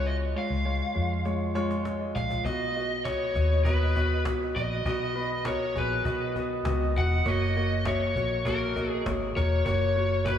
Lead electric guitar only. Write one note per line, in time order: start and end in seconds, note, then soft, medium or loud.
0.07 0.15 D#5 medium
0.38 1.23 F5 medium
2.16 2.44 F5 medium
2.46 3.02 D#5 medium
3.04 3.61 C#5 medium
3.65 4.21 B4 medium
4.56 4.86 D#5 loud
4.87 5.47 D#5 loud
5.47 5.77 C#5 medium
5.78 6.33 B4 medium
6.98 7.28 F#5 loud
7.28 7.87 D#5 medium
7.87 8.42 C#5 medium
8.47 8.90 A#4 medium
8.90 9.02 G#4 medium
9.37 9.64 C#5 loud
9.66 10.28 C#5 medium
10.26 10.38 B4 medium